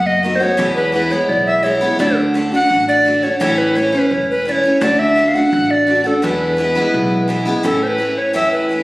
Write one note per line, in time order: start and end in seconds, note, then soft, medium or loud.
0.00 0.39 F#1 medium
0.00 0.23 A3 soft
0.00 0.24 B3 medium
0.00 0.24 F#4 medium
0.06 0.37 D#5 loud
0.23 0.41 D#3 soft
0.23 0.42 A3 soft
0.23 0.41 B3 medium
0.23 0.39 F#4 soft
0.35 0.43 C5 medium
0.40 0.58 A3 soft
0.40 0.58 B3 medium
0.40 0.58 F#4 medium
0.40 0.75 C#5 loud
0.57 0.93 E2 medium
0.57 1.10 E2 medium
0.57 0.94 B2 medium
0.57 0.91 E3 medium
0.57 0.92 G#3 medium
0.57 0.93 B3 medium
0.57 0.94 E4 medium
0.76 0.92 B4 loud
0.92 1.11 E3 medium
0.92 1.11 G#3 medium
0.92 1.10 B3 medium
0.92 1.09 E4 medium
0.92 1.13 B4 medium
1.10 1.62 E3 soft
1.10 1.63 G#3 soft
1.10 1.64 B3 medium
1.10 1.64 E4 soft
1.10 1.30 C#5 medium
1.29 1.80 B1 medium
1.29 1.46 D5 medium
1.46 1.65 E5 medium
1.63 1.81 E3 medium
1.63 1.82 G#3 medium
1.63 1.81 B3 medium
1.63 1.80 E4 medium
1.63 1.99 C#5 medium
1.81 1.99 E3 soft
1.81 1.99 G#3 soft
1.81 2.00 B3 medium
1.81 1.99 E4 medium
1.99 2.51 D2 loud
1.99 2.33 D3 medium
1.99 2.35 A3 medium
1.99 2.35 D4 medium
1.99 2.36 F#4 medium
1.99 2.16 D5 medium
2.34 2.52 D3 medium
2.34 2.53 A3 medium
2.34 2.52 D4 medium
2.34 2.51 F#4 medium
2.52 3.06 A3 soft
2.52 3.06 D4 medium
2.52 3.05 F#4 medium
2.52 2.87 F#5 loud
2.70 3.21 A1 medium
2.88 3.25 D5 loud
3.05 3.23 D3 medium
3.05 3.24 A3 medium
3.05 3.23 D4 medium
3.05 3.21 F#4 medium
3.23 3.40 A3 soft
3.23 3.41 D4 medium
3.23 3.41 F#4 medium
3.23 3.39 C#5 medium
3.40 3.92 A1 loud
3.40 3.76 A2 medium
3.40 3.74 E3 medium
3.40 3.76 A3 medium
3.40 3.76 C#4 medium
3.40 3.77 E4 medium
3.40 3.59 C#5 loud
3.58 3.78 B4 loud
3.75 3.93 E3 medium
3.75 3.94 A3 medium
3.75 3.93 C#4 medium
3.75 3.91 E4 medium
3.75 3.95 C#5 loud
3.92 4.45 A3 soft
3.92 4.47 C#4 medium
3.92 4.46 E4 medium
3.92 4.13 B4 medium
4.11 4.62 E1 medium
4.11 4.29 C#5 medium
4.30 4.46 B4 loud
4.45 4.64 E3 medium
4.45 4.64 A3 soft
4.45 4.64 C#4 medium
4.45 4.62 E4 medium
4.45 4.53 D5 medium
4.52 4.80 C#5 medium
4.63 4.80 A3 soft
4.63 4.82 C#4 medium
4.63 4.82 E4 medium
4.81 5.33 D2 loud
4.81 5.15 D3 medium
4.81 5.16 A3 medium
4.81 5.17 D4 medium
4.81 5.18 F#4 medium
4.81 5.00 D5 loud
4.99 5.29 E5 loud
5.16 5.34 D3 medium
5.16 5.35 A3 medium
5.16 5.34 D4 medium
5.16 5.33 F#4 medium
5.28 5.36 F5 medium
5.34 5.87 A3 soft
5.34 5.88 D4 medium
5.34 5.87 F#4 medium
5.34 5.72 F#5 loud
5.52 6.04 A1 medium
5.71 6.08 D5 loud
5.87 6.05 D3 medium
5.87 6.06 A3 medium
5.87 6.05 D4 medium
5.87 6.03 F#4 medium
6.04 6.23 A3 soft
6.04 6.23 D4 medium
6.04 6.22 F#4 medium
6.04 6.25 A4 medium
6.22 6.58 E2 medium
6.22 6.75 E2 loud
6.22 6.58 B2 medium
6.22 6.56 E3 medium
6.22 6.57 G#3 medium
6.22 6.58 B3 medium
6.22 6.59 E4 medium
6.22 7.29 B4 medium
6.57 6.75 E3 medium
6.57 6.76 G#3 medium
6.57 6.75 B3 medium
6.57 6.74 E4 medium
6.75 7.27 E3 medium
6.75 7.28 G#3 medium
6.75 7.29 B3 medium
6.75 7.29 E4 medium
6.94 7.45 B1 medium
7.28 7.46 E3 medium
7.28 7.46 G#3 medium
7.28 7.46 B3 medium
7.28 7.44 E4 medium
7.45 7.63 E3 soft
7.45 7.64 G#3 medium
7.45 7.64 B3 medium
7.45 7.64 E4 medium
7.63 8.16 A1 medium
7.63 7.99 A2 medium
7.63 7.98 E3 medium
7.63 7.98 A3 medium
7.63 7.99 C#4 medium
7.63 8.01 E4 medium
7.63 7.84 A4 medium
7.83 7.89 C5 loud
7.88 8.20 B4 loud
7.98 8.34 E3 medium
7.98 8.34 A3 medium
7.98 8.34 C#4 medium
7.98 8.35 E4 medium
8.18 8.35 C#5 medium
8.33 8.83 E2 medium
8.33 8.70 A2 medium
8.33 8.68 E3 medium
8.33 8.69 A3 medium
8.33 8.70 C#4 medium
8.33 8.71 E4 medium
8.33 8.51 E5 loud
8.52 8.83 B4 medium
8.69 8.83 E3 soft
8.69 8.83 A3 medium
8.69 8.83 C#4 soft
8.69 8.83 E4 medium